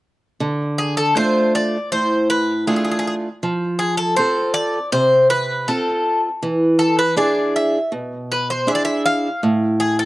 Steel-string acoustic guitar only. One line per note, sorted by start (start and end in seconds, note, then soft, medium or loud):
0.40 1.13 D3 medium
1.15 1.76 A3 soft
1.15 1.76 D4 soft
1.15 1.76 F4 medium
1.92 2.64 A2 soft
2.67 3.27 A3 soft
2.67 3.27 D4 soft
2.67 3.27 F4 soft
3.43 4.15 F3 medium
4.18 4.78 C4 soft
4.18 4.78 F4 soft
4.18 4.78 A4 soft
4.92 5.65 C3 soft
5.68 6.28 C4 soft
5.68 6.28 F4 soft
5.68 6.28 A4 soft
6.43 7.15 E3 medium
7.16 7.77 D4 medium
7.16 7.77 E4 soft
7.16 7.78 G#4 medium
7.92 8.65 B2 medium
8.67 9.27 D4 soft
8.67 9.28 E4 soft
8.67 9.28 G#4 soft
9.43 10.05 A2 medium